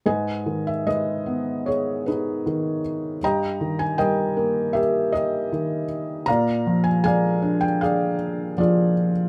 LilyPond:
<<
  \new Staff \with { instrumentName = "Felt piano" } { \time 4/4 \key gis \minor \tempo 4 = 78 << { gis''8. e''16 dis''4 cis''8 b'4 r8 | ais''8. gis''16 g''4 e''8 dis''4 r8 | ais''8. gis''16 gis''8. g''16 eis''4 d''8. r16 | } \\ { <b' dis''>4 <gis' b'>4 gis'8 <dis' gis'>4. | <dis'' g''>4 <ais' dis''>4 <g' ais'>8 <g' ais'>4. | <d'' eis''>4 <d'' eis''>4 <gis' d''>4 <eis' gis'>4 | } >> }
  \new Staff \with { instrumentName = "Felt piano" } { \clef bass \time 4/4 \key gis \minor gis,8 dis8 gis8 b4. dis4 | g,8 dis8 g8 ais4. dis4 | ais,8 eis8 gis8 d'4. eis4 | }
>>